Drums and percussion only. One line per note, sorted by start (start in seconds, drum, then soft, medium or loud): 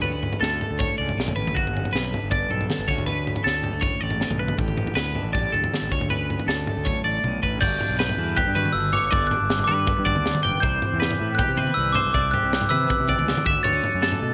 0.04 floor tom medium
0.23 floor tom medium
0.33 floor tom medium
0.43 snare medium
0.61 floor tom medium
0.80 kick medium
0.80 floor tom medium
1.09 floor tom medium
1.20 snare medium
1.28 floor tom medium
1.28 mid tom medium
1.47 floor tom medium
1.47 mid tom medium
1.56 kick medium
1.56 floor tom medium
1.67 mid tom medium
1.77 floor tom medium
1.85 floor tom medium
1.96 snare medium
2.14 floor tom medium
2.32 kick loud
2.32 floor tom medium
2.51 floor tom medium
2.61 floor tom medium
2.70 snare medium
2.70 mid tom medium
2.88 kick medium
2.98 floor tom medium
3.08 floor tom medium
3.27 floor tom medium
3.36 floor tom medium
3.47 snare medium
3.64 floor tom medium
3.82 kick loud
3.82 floor tom medium
4.10 floor tom medium
4.21 snare medium
4.31 floor tom medium
4.31 mid tom medium
4.48 floor tom medium
4.48 mid tom medium
4.59 kick loud
4.59 floor tom medium
4.68 mid tom medium
4.78 floor tom medium
4.87 floor tom medium
4.97 snare medium
5.16 floor tom medium
5.35 kick medium
5.35 floor tom medium
5.54 floor tom medium
5.64 floor tom medium
5.74 snare medium
5.74 mid tom medium
5.92 kick medium
6.01 floor tom medium
6.11 floor tom medium
6.30 floor tom medium
6.39 floor tom medium
6.49 snare medium
6.67 floor tom medium
6.86 kick medium
6.86 high tom soft
7.24 mid tom medium
7.43 kick medium
7.62 kick loud
7.62 floor tom medium
7.62 crash loud
7.81 floor tom medium
8.00 snare medium
8.09 floor tom medium
8.37 kick loud
8.37 floor tom medium
8.56 floor tom medium
8.56 mid tom medium
8.65 mid tom medium
8.93 floor tom medium
9.12 kick loud
9.12 floor tom medium
9.31 floor tom medium
9.50 snare medium
9.59 floor tom medium
9.69 mid tom medium
9.87 kick loud
9.87 floor tom medium
10.06 kick medium
10.06 floor tom medium
10.06 mid tom medium
10.16 mid tom medium
10.26 snare medium
10.35 mid tom medium
10.45 floor tom medium
10.63 kick loud
10.63 floor tom medium
10.82 floor tom medium
11.02 snare medium
11.11 floor tom medium
11.39 kick loud
11.39 floor tom medium
11.58 floor tom medium
11.58 mid tom medium
11.67 mid tom medium
11.95 floor tom medium
12.14 kick loud
12.14 floor tom medium
12.34 floor tom medium
12.53 snare medium
12.62 floor tom medium
12.71 mid tom medium
12.90 kick loud
12.90 floor tom medium
13.08 kick medium
13.08 floor tom medium
13.08 mid tom medium
13.19 mid tom medium
13.28 snare medium
13.37 mid tom medium
13.46 kick loud
13.46 floor tom medium
13.65 floor tom medium
13.84 floor tom medium
14.03 snare medium
14.12 floor tom medium